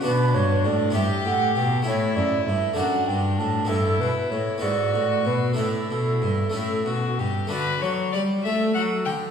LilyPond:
<<
  \new Staff \with { instrumentName = "Flute" } { \time 6/8 \key d \major \tempo 4. = 65 b'8 cis''8 d''8 e''8 fis''8 g''8 | cis''8 d''8 e''8 fis''8 g''8 a''8 | a'8 b'8 cis''8 d''4 b'8 | a'2~ a'8 r8 |
r4. a'4. | }
  \new Staff \with { instrumentName = "Violin" } { \time 6/8 \key d \major d'4. g'4. | e'4. d'4. | e'4. fis'4. | e'4. e'8 fis'8 g'8 |
b'8 cis''8 d''8 e''8 fis''8 g''8 | }
  \new Staff \with { instrumentName = "Harpsichord" } { \time 6/8 \key d \major <b d' fis'>4. <b e' g'>4. | <a e'>4. <a d' fis'>4. | <b e'>4. <b e'>4. | <a d' e'>4. <a cis' e'>4. |
<a d' fis'>2. | }
  \new Staff \with { instrumentName = "Harpsichord" } { \clef bass \time 6/8 \key d \major b,8 g,8 a,8 g,8 a,8 b,8 | a,8 fis,8 g,8 fis,8 g,8 a,8 | g,8 b,8 a,8 gis,8 a,8 b,8 | a,8 b,8 g,8 a,8 b,8 g,8 |
d8 fis8 g8 a8 fis8 d8 | }
  \new Staff \with { instrumentName = "Cello" } { \clef bass \time 6/8 \key d \major b,8 g,8 a,8 g,8 a,8 b,8 | a,8 fis,8 g,8 fis,8 g,8 a,8 | g,8 b,8 a,8 gis,8 a,8 b,8 | a,8 b,8 g,8 a,8 b,8 g,8 |
d8 fis8 g8 a8 fis8 d8 | }
>>